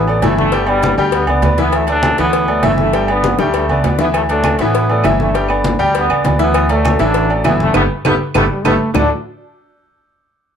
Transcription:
Already playing: A1 E3 F#3 B3
0.07 A3 A4 D5, high conga, low agogo
0.22 G1 E3 A3 E4 E5, cowbell, high conga, low timbale, low agogo
0.37 D3 A3, high conga
0.52 G3 G4 G5, cowbell, high conga, low agogo
0.67 B2 D3 G3 B3 B4 D5, high conga, low agogo
0.83 cowbell, high conga, low timbale
0.97 D2 G3 G4 G5, high conga, low agogo
1.12 D3 B3, cowbell, high conga, low agogo
1.27 C#2 B3 B4 D5, high conga, low agogo
1.42 D2 B3 B4 D5, cowbell, high conga, low timbale, low agogo
1.58 E3 B3 E4 E5, cowbell, high conga
1.72 E3 F#3 A3, cowbell, high conga, low agogo
1.87 F#3 A3 D4 A4 D5, cowbell, high conga, low agogo
2.03 cowbell, high conga, low timbale, low agogo
2.18 D2 E3 F#3 B3 E4 E5, cowbell, high conga, low agogo
2.33 cowbell, high conga
2.48 A3 A4 D5, high conga, low agogo
2.63 G1 E3 A3 E4 E5, cowbell, high conga, low timbale, low agogo
2.78 D3 A3, high conga
2.93 G3 G4 G5, cowbell, high conga, low agogo
3.08 D3 B3 B4 D5, high conga, low agogo
3.23 cowbell, high bongo, high conga, low timbale
3.39 D2 G3 A3 G4 G5, low bongo, high conga, low agogo
3.54 D3 A3, cowbell, high conga, low agogo
3.69 C#2 B3 B4 D5, high conga, low agogo
3.84 D2 B3 B4 D5, cowbell, high conga, low timbale, low agogo
3.99 E3 B3 E4 E5, cowbell, low bongo
4.14 E3 F#3 A3, cowbell, high conga, low agogo, claves
4.29 F#3 A3 D4 A4 D5, cowbell, high conga, low agogo
4.44 cowbell, high conga, low timbale, low agogo, claves
4.59 A1 E3 F#3 B3 E4 E5, cowbell, high conga, low agogo
4.74 cowbell, high conga
4.89 A3 A4 D5, high conga, low agogo
5.04 G1 E3 A3 E4 E5, cowbell, high conga, low timbale, low agogo, claves
5.20 D3 A3, high conga
5.34 G3 G4 G5, cowbell, high conga, low agogo
5.49 B3 B4 D5, high conga, low agogo, claves
5.64 cowbell, high conga, low timbale
5.79 D2 G3 G4 G5, high conga, low agogo
5.94 D3 B3, cowbell, high conga, low agogo
6.09 C#2 B3 B4 D5, high conga, low agogo, claves
6.24 D2 B3 B4 D5, cowbell, high conga, low timbale, low agogo
6.39 E3 F#3 B3 E4 E5, cowbell
6.54 cowbell, high conga, low agogo, claves
6.69 E3 F#3 A3 A4 D5, cowbell, high conga, low agogo
6.85 cowbell, high conga, low timbale, low agogo, claves
6.99 A1 E3 F#3 A3 D4 E4 E5, cowbell, high conga, low agogo
7.14 cowbell, high conga
7.29 A3 A4 D5, high conga, low agogo
7.44 G1 E3 B3 E4 E5, cowbell, high conga, low timbale, low agogo, claves
7.60 D3 A3, high conga
7.74 G1 G3 A3 B3 G4 A4 B4, cowbell, high conga, high timbale, claves
8.05 G1 G3 A3 B3 G4 A4 B4, cowbell, high conga, high timbale, claves
8.34 G1 G3 A3 B3 G4 A4 B4, cowbell, high conga, high timbale, claves
8.50 G3
8.65 G1 G3 A3 B3 G4 A4 B4, cowbell, high conga, high timbale, claves
8.94 D2 D3 A3 D4 E4 F#4 A4, low bongo, low conga, low timbale, claves

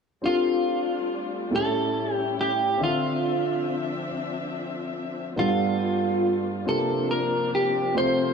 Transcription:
0.22 G3 A3 C4 D4 F4 G4 A4
1.50 A2 A3 C4 C#4 E4 G4 A4
1.56 C#4 A4
2.14 G4
2.41 G4
2.78 D3 F3 C4 D4 E5
2.83 F4 A4
5.36 G2 G3 A3 B3 D4 F4 G4 A4
6.66 C3 F3 A#3 C4 D4 F4 G4 A4
7.11 A#4
7.55 G4
7.94 C3 A3 C4 F4 G#4 C5
8.03 A4

